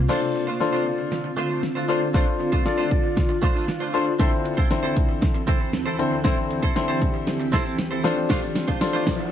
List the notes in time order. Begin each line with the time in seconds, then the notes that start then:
0.09 D3 A3 C4 D4 F4 A4 C5, snare, crash
0.22 muted clean electric guitar stroke
0.34 muted clean electric guitar stroke
0.47 A3 D4 F4 C5
0.60 D4 F4 A4 C5, muted clean electric guitar stroke, snare
0.73 A3 D4 F4 C5
0.86 muted clean electric guitar stroke
0.98 muted clean electric guitar stroke
1.11 muted clean electric guitar stroke, snare
1.24 muted clean electric guitar stroke
1.37 A3 D4 F4 C5
1.50 A3 D4 F4 C5
1.63 muted clean electric guitar stroke, snare
1.75 A3 D4 F4 C5
1.88 A3 D4 F4 A4 C5
2.01 muted clean electric guitar stroke
2.14 A3 D4 F4 A4 C5, kick, snare
2.27 muted clean electric guitar stroke
2.39 muted clean electric guitar stroke
2.52 A3 D4 F4 C5, kick
2.65 D4 F4 A4 D5, muted clean electric guitar stroke, snare
2.78 A3 D4 F4 C5
2.91 muted clean electric guitar stroke, kick
3.04 muted clean electric guitar stroke
3.16 muted clean electric guitar stroke, kick, snare
3.29 muted clean electric guitar stroke
3.42 A3 D4 F4 C5, kick
3.55 A3 D4 F4 C5
3.68 muted clean electric guitar stroke, snare
3.80 A3 D4 F4 C5
3.93 A3 D4 F4 A4 C5
4.06 muted clean electric guitar stroke
4.19 D2 D3 E3 C4 E4 A4 C5, kick, snare, closed hi-hat
4.32 muted clean electric guitar stroke
4.45 muted clean electric guitar stroke, closed hi-hat
4.57 C4 E4 A4 C5, kick
4.70 D3 C4 E4 A4 C5, muted clean electric guitar stroke, snare, closed hi-hat
4.83 C4 E4 A4 C5
4.96 muted clean electric guitar stroke, kick, closed hi-hat
5.09 muted clean electric guitar stroke
5.22 muted clean electric guitar stroke, kick, snare, closed hi-hat
5.34 muted clean electric guitar stroke, closed hi-hat
5.47 C4 E4 A4 C5, kick, closed hi-hat
5.60 C4 E4 A4 C5
5.73 muted clean electric guitar stroke, snare, closed hi-hat
5.86 C4 E4 A4 C5
5.99 D3 C4 E4 A4 C5, muted clean electric guitar stroke, closed hi-hat
6.11 muted clean electric guitar stroke
6.24 D3 C4 E4 G4 A4 C5, kick, snare, closed hi-hat
6.37 muted clean electric guitar stroke
6.50 muted clean electric guitar stroke, closed hi-hat
6.63 C4 E4 A4 C5, kick
6.76 D3 C4 E4 A4 C5, muted clean electric guitar stroke, snare, closed hi-hat
6.88 C4 E4 A4 C5
7.01 muted clean electric guitar stroke, kick, closed hi-hat
7.14 muted clean electric guitar stroke
7.27 muted clean electric guitar stroke, snare, closed hi-hat
7.40 muted clean electric guitar stroke, closed hi-hat
7.52 C4 E4 A4 C5, kick, snare, closed hi-hat
7.65 C4 E4 A4 C5
7.78 muted clean electric guitar stroke, snare, closed hi-hat
7.91 C4 E4 A4 C5
8.03 F3 A3 D4 F4 A4 C5, snare, closed hi-hat
8.16 muted clean electric guitar stroke
8.29 A3 D4 F4 C5, kick, snare, closed hi-hat, tambourine, riser
8.42 muted clean electric guitar stroke
8.55 muted clean electric guitar stroke, snare, closed hi-hat, tambourine
8.68 A3 D4 F4 C5, kick
8.81 D4 F4 A4 C5, muted clean electric guitar stroke, snare, closed hi-hat, tambourine
8.93 A3 D4 F4 C5
9.06 muted clean electric guitar stroke, kick, snare, closed hi-hat, tambourine
9.19 muted clean electric guitar stroke